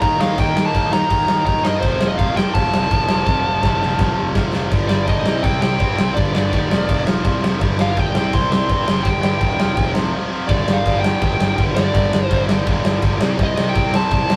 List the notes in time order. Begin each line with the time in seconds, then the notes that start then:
0.01 D#2 D#3 A#3 D#4 A#5, kick, crash
0.18 D#2 D#3 A#3 D#4 F5, snare
0.37 D#2 D#3 A#3 D#4 G5, kick, crash
0.56 D#2, snare
0.66 A5
0.73 D#2 D#3 A#3 D#4, kick, crash
0.91 D#2 D#3 A#3 D#4 A#5, snare
1.09 D#2 D#3 A#3 D#4, kick, crash
1.28 D#2, snare
1.45 D#2 D#3 A#3 D#4 A#5, kick, crash
1.64 G2 D#3 A#3 D#4 D#5, snare
1.80 F1 F2 C3 F3 C5, kick, crash
2.00 F1, snare
2.08 D#5
2.18 F1 F2 C3 F3 F5, kick, crash
2.36 F2 C3 F3 G5, snare
2.54 F1 F2 C3 F3 A5, kick, crash
2.73 F1, snare
2.91 F1 F2 C3 F3, kick, crash
3.09 F1 F2 C3 F3, snare
3.25 F1 F2 C3 F3, kick, snare
3.45 F1
3.62 F1 F2 C3 F3, kick, snare
3.79 F1 F2 C3 F3, snare
3.99 F1 F2 C3 F3, kick, snare
4.19 F1
4.34 F1 F2 C3 F3, kick, snare
4.53 F1 F2 C3 F3, snare
4.71 G1 G2 D3 G3, kick, crash
4.88 G1 G2 D3 G3 D5, snare
5.07 G1 G2 D3 G3 D#5, kick, crash
5.26 C2 C3 G3 C4, snare
5.43 C2 C3 G3 C4 G5, kick, crash
5.61 C2 C3 G3 C4 G5, snare
5.79 G2 C3 G3 C4, kick, crash
5.98 C2 C3 G3 C4, snare
6.15 G1 G2 D3 G3 D5, kick, crash
6.33 G1 G2 D3 G3 D5, snare
6.51 D#2 G2 D3 G3, kick, crash
6.69 F1 F2 C3 F3, snare
6.88 F1 F2 C3 F3, kick, crash
7.05 F1 F2 C3 F3, snare
7.24 C2 F2 C3 F3, kick, crash
7.42 F1 F2 C3 F3, snare
7.61 G1 G2 D3 G3, kick, crash
7.78 G1 G2 D3 G3 F5, snare
7.91 F5
7.96 G1 G2 D3 G3 G5, kick, crash
8.15 C2 C3 G3 C4, snare
8.33 C2 C3 G3 C4 C6, kick, crash
8.51 C2 C3 G3 C4 C6, snare
8.70 G2 C3 G3 C4, kick, crash
8.87 F#1 C3 G3 C4, snare
9.03 G1 G2 D3 G3 G5, kick, crash
9.22 G1 G2 D3 G3 G5, snare
9.41 E1 G2 D3 G3, kick, crash
9.58 F1 F2 C3 F3, snare
9.76 F1 F2 C3 F3, kick, crash
9.95 F1 F2 C3 F3, snare
10.13 F2 C3 F3
10.31 F2 C3 F3
10.48 G1 G2 D3 G3 D5, kick, crash
10.68 G1, snare
10.73 F5
10.85 G1 G2 D3 G3, kick, crash
11.01 G2 D3 G3 G5, snare
11.21 G1 G2 D3 G3, kick, crash
11.39 G1, snare
11.56 G1 G2 D3 G3 G5, kick, crash
11.75 G1 G2 D3 G3 D5, snare
11.94 G1 G2 D3 G3, kick, crash
12.12 G1, snare
12.26 G2 C5
12.30 G1 D3 G3, kick, crash
12.48 G1 G2 D3 G3, snare
12.65 G1 G2 D3 G3, kick, crash
12.85 G1, snare
13.02 G1 G2 D3 G3, kick, crash
13.20 C2 C3 G3 C4, snare
13.37 C2 C3 G3 C4, kick, crash
13.43 D#5
13.57 C2, snare
13.69 G5
13.74 C2 C3 G3 C4, kick, crash
13.92 C3 G3 C4 A5, snare
14.11 C2 C3 G3 C4, kick, crash
14.28 C2, snare